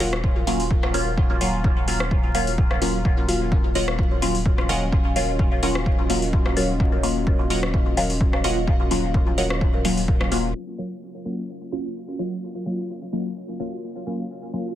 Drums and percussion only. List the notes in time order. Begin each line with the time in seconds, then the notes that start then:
0.00 open hi-hat
0.13 cross-stick
0.24 kick
0.47 open hi-hat
0.60 open hi-hat
0.71 kick
0.83 cross-stick
0.94 open hi-hat
1.17 kick
1.41 open hi-hat
1.64 kick
1.88 open hi-hat
2.00 cross-stick
2.11 kick
2.35 open hi-hat
2.47 open hi-hat
2.58 kick
2.71 cross-stick
2.82 open hi-hat
3.05 kick
3.29 open hi-hat
3.52 kick
3.75 open hi-hat
3.88 cross-stick
3.99 kick
4.22 open hi-hat
4.35 open hi-hat
4.46 kick
4.58 cross-stick
4.69 open hi-hat
4.92 kick
5.16 open hi-hat
5.39 kick
5.63 open hi-hat
5.75 cross-stick
5.86 kick
6.10 open hi-hat
6.22 open hi-hat
6.33 kick
6.46 cross-stick
6.57 open hi-hat
6.80 kick
7.03 open hi-hat
7.27 kick
7.50 open hi-hat
7.63 cross-stick
7.74 kick
7.97 open hi-hat
8.10 open hi-hat
8.21 kick
8.33 cross-stick
8.44 open hi-hat
8.68 kick
8.91 open hi-hat
9.14 kick
9.38 open hi-hat
9.50 cross-stick
9.61 kick
9.85 open hi-hat
9.97 open hi-hat
10.08 kick
10.21 cross-stick
10.32 open hi-hat